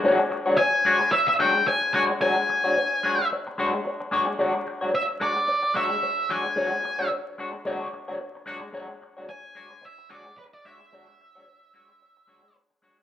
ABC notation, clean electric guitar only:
X:1
M:4/4
L:1/16
Q:"Swing 16ths" 1/4=110
K:Emix
V:1 name="Clean electric guitar"
[G,DFc] z2 [G,DFc] z2 [G,DFc] z3 [G,DFc] z3 [G,DFc] z | [G,DFc] z2 [G,DFc] z2 [G,DFc] z3 [G,DFc] z3 [G,DFc] z | [G,DFc] z2 [G,DFc] z2 [G,DFc] z3 [G,DFc] z3 [G,DFc] z | [G,DFc] z2 [G,DFc] z2 [G,DFc] z [G,DFc] z2 [G,DFc] z2 [G,DFc] z |
[G,DFc] z2 [G,DFc] z2 [G,DFc] z3 [G,DFc] z3 [G,DFc] z | [G,DFc] z2 [G,DFc] z2 [G,DFc] z3 [G,DFc] z3 [G,DFc] z |]